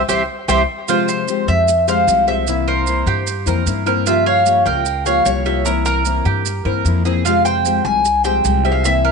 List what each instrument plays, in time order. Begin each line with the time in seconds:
0.09 upright bass C2, nylon-string guitar E3 G3 C4, cuban tres G4 C5 E5, maracas
0.48 upright bass C2, nylon-string guitar E3 G3 C4, cuban tres G4 C5 E5, maracas
0.88 nylon-string guitar C3 F3 G#3 C4 G4, cuban tres F4 C5, maracas
1.08 cuban tres C5, maracas
1.28 nylon-string guitar F3 G#3 C4 G4, maracas
1.48 upright bass F2, cuban tres E5, maracas
1.68 muted nylon-string guitar stroke, maracas
1.88 nylon-string guitar F3 G#3 C4 G4, cuban tres C5 F5, maracas
2.07 upright bass C2, nylon-string guitar F3 G#3 C4 G4, maracas
2.27 nylon-string guitar F3 G#3 C4 G4, cuban tres E5, maracas
2.47 nylon-string guitar C3 E3 A#3 C4 E4, cuban tres E5, maracas
2.68 cuban tres A#4 C5
2.87 nylon-string guitar E3 A#3 C4 E4, maracas
3.06 upright bass G2, cuban tres G4, maracas
3.27 muted nylon-string guitar stroke, maracas
3.46 upright bass F2, nylon-string guitar E3 A#3 C4 E4, cuban tres A#4, maracas
3.66 upright bass G2, nylon-string guitar E3 A#3 C4 E4, maracas
3.86 nylon-string guitar E3 A#3 C4 E4, cuban tres A#4, maracas
4.06 nylon-string guitar C#3 F3 A#3 F4 G4, cuban tres F4 E5, maracas
4.26 cuban tres C#5 F5
4.46 nylon-string guitar F3 A#3 F4 G4, maracas
4.66 upright bass C#2, cuban tres A#4 G5, maracas
4.86 muted nylon-string guitar stroke, maracas
5.06 nylon-string guitar F3 A#3 F4 G4, cuban tres C#5 F5, maracas
5.25 upright bass C2, nylon-string guitar F3 A#3 F4 G4, cuban tres C#5, maracas
5.46 nylon-string guitar F3 A#3 F4 G4, cuban tres E5, maracas
5.65 nylon-string guitar C3 E3 A#3 C4 E4, cuban tres A#4, maracas
5.85 cuban tres A#4, maracas
6.05 nylon-string guitar E3 A#3 C4 E4, maracas
6.25 upright bass G2, cuban tres G4, maracas
6.46 muted nylon-string guitar stroke, maracas
6.65 upright bass G2, nylon-string guitar E3 A#3 C4 E4, cuban tres A#4
6.85 upright bass F2, nylon-string guitar E3 A#3 C4 E4, maracas
7.05 nylon-string guitar E3 A#3 C4 E4, cuban tres G#4, maracas
7.25 nylon-string guitar C3 F3 G#3 C4 G4, cuban tres F4 F5, maracas
7.45 cuban tres C5 G5, maracas
7.65 nylon-string guitar F3 G#3 C4 G4, maracas
7.85 upright bass C2, cuban tres G#5, maracas
8.05 muted nylon-string guitar stroke, maracas
8.24 nylon-string guitar F3 G#3 C4 G4, cuban tres C5 G5, maracas
8.45 upright bass C2, nylon-string guitar F3 G#3 C4 G4, maracas
8.65 nylon-string guitar F3 G#3 C4 G4, cuban tres E5, maracas
8.72 cuban tres F5
8.85 nylon-string guitar C3 E3 A#3 C4 E4, cuban tres E5, maracas
9.05 cuban tres A#4